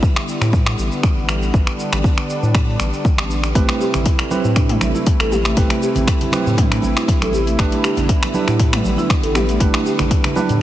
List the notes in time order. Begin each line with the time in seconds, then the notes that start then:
Already playing: D3 G3 B3 E4
0.03 kick, shaker
0.16 finger snap
0.29 shaker
0.41 A2, finger snap, shaker
0.53 kick, shaker
0.66 finger snap
0.78 A1, shaker
0.92 shaker
1.03 finger snap, kick, shaker
1.17 A1
1.29 finger snap, shaker
1.43 shaker
1.53 A1 D4, kick, shaker
1.67 finger snap
1.80 shaker
1.92 A1, finger snap, shaker
2.04 kick, shaker
2.18 finger snap
2.30 shaker
2.43 A2, shaker
2.55 finger snap, kick, shaker
2.80 A1, finger snap, shaker
2.94 shaker
3.05 kick, shaker
3.18 A1, finger snap
3.31 shaker
3.44 finger snap, shaker
3.55 A1 C3 A3 C4 E4 G4 B4, kick, closed hi-hat, shaker
3.69 A3, finger snap, closed hi-hat, muted conga
3.81 G4, shaker
3.94 A1 C4, finger snap, closed hi-hat, muted conga, low conga, shaker
4.06 kick, closed hi-hat, shaker
4.19 finger snap, closed hi-hat, muted conga
4.31 C4 E4 G4 B4, high conga, shaker
4.45 A2 E4, shaker
4.56 D4, finger snap, kick, closed hi-hat, shaker
4.69 A3, closed hi-hat, mid tom
4.81 A1, finger snap, muted conga, high conga, shaker
4.95 E4, high conga, shaker
5.06 kick, closed hi-hat, muted conga, shaker
5.20 A1 A4, finger snap, closed hi-hat
5.32 G4, mid tom, muted conga, shaker
5.45 A3, finger snap, closed hi-hat, shaker
5.57 A1 A3 C4 E4 G4 B4, kick, closed hi-hat, shaker
5.70 A3, finger snap, closed hi-hat, muted conga
5.82 G4, shaker
5.95 A1 C4, closed hi-hat, muted conga, low conga, shaker
6.07 finger snap, kick, closed hi-hat, shaker
6.21 closed hi-hat, muted conga, low conga
6.32 C4 E4 G4 B4, finger snap, high conga, shaker
6.46 A2 E4, low conga, shaker
6.57 D4, kick, closed hi-hat, mid tom, muted conga, high conga, shaker
6.72 A3, finger snap, closed hi-hat
6.82 A1, muted conga, high conga, shaker
6.97 E4, finger snap, shaker
7.08 kick, closed hi-hat, muted conga, high conga, shaker
7.22 A1 A4, finger snap, closed hi-hat, high conga
7.33 G4, muted conga, shaker
7.47 A3, closed hi-hat, shaker
7.59 A1 D3 G3 A3 B3 D4 E4 G4 B4, finger snap, kick, closed hi-hat, shaker
7.72 A3, closed hi-hat, muted conga
7.84 G4, finger snap, shaker
7.97 A1 B3, closed hi-hat, muted conga, low conga, shaker
8.09 kick, closed hi-hat, shaker
8.23 finger snap, closed hi-hat, muted conga
8.34 D4 E4 G4 B4, high conga, shaker
8.48 A2 E4, finger snap, shaker
8.59 D4, kick, closed hi-hat, shaker
8.73 A3, finger snap, closed hi-hat, mid tom
8.84 A1, muted conga, high conga, shaker
8.98 E4, high conga, shaker
9.10 finger snap, kick, closed hi-hat, shaker
9.23 A1 A4, closed hi-hat
9.35 G4, finger snap, mid tom, muted conga, shaker
9.49 A3, closed hi-hat, shaker
9.60 A1 A3 D4 E4 G4 B4, kick, closed hi-hat, shaker
9.74 A3, finger snap, closed hi-hat, muted conga
9.86 G4, shaker
9.99 A1 B3, finger snap, closed hi-hat, muted conga, low conga, shaker
10.11 kick, closed hi-hat, high conga, shaker
10.24 finger snap, closed hi-hat, muted conga, low conga
10.36 D4 E4 G4 B4, mid tom, high conga, shaker
10.49 A2 E4, closed hi-hat, low conga, shaker